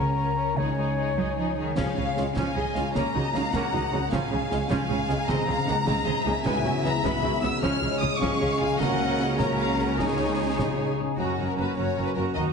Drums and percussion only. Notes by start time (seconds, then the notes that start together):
1.77 concert bass drum, snare, crash
2.17 snare
2.36 concert bass drum, snare
2.75 snare
2.95 concert bass drum, snare
3.35 snare
3.53 concert bass drum, snare
4.12 concert bass drum, snare
4.52 snare
4.70 concert bass drum, snare
5.09 snare
5.29 concert bass drum, snare
5.68 snare
5.87 concert bass drum, snare
6.46 concert bass drum, snare, crash
6.85 snare
7.05 concert bass drum, snare
7.43 snare
7.63 concert bass drum, snare
8.02 snare
8.22 concert bass drum, snare
8.80 concert bass drum, snare
9.20 snare
9.39 concert bass drum, snare
9.79 snare
9.99 concert bass drum, snare
10.59 concert bass drum, snare